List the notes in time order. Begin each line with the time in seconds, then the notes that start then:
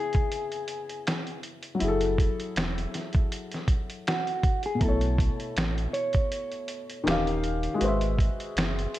Already playing: C#3 B3 E4 G#4 D#5
0.13 kick, closed hi-hat
0.32 closed hi-hat
0.52 closed hi-hat
0.68 closed hi-hat
0.89 closed hi-hat
1.07 finger snap, snare, closed hi-hat
1.27 closed hi-hat
1.43 closed hi-hat
1.63 closed hi-hat
1.75 F#3
1.79 F#1 E4, closed hi-hat
1.84 G#4
1.88 A4
2.01 closed hi-hat
2.18 kick, closed hi-hat
2.40 closed hi-hat
2.56 E1, finger snap, snare, closed hi-hat
2.78 closed hi-hat
2.94 snare, closed hi-hat
3.13 kick, closed hi-hat
3.32 closed hi-hat
3.52 snare, closed hi-hat
3.68 kick, closed hi-hat
3.90 closed hi-hat
4.07 F#4, finger snap, snare, closed hi-hat
4.27 closed hi-hat
4.43 kick, closed hi-hat
4.63 G#4, closed hi-hat
4.75 B2
4.79 B1 A3 A4, kick, closed hi-hat
4.84 E4
4.88 C#5
5.01 closed hi-hat
5.18 kick, closed hi-hat
5.40 closed hi-hat
5.57 A1, finger snap, snare, closed hi-hat
5.78 closed hi-hat
5.93 C#5, closed hi-hat
6.13 kick, closed hi-hat
6.32 closed hi-hat
6.52 closed hi-hat
6.68 closed hi-hat
6.90 closed hi-hat
7.04 D#1 D#3 C#4, finger snap, closed hi-hat
7.08 G4 F5, snare
7.27 closed hi-hat
7.44 closed hi-hat
7.63 closed hi-hat
7.74 G#3 F#4
7.81 G#1 B4 C5, closed hi-hat
7.88 E5
8.01 closed hi-hat
8.19 kick, closed hi-hat
8.40 closed hi-hat
8.56 F#1, finger snap, snare, closed hi-hat
8.79 closed hi-hat
8.94 closed hi-hat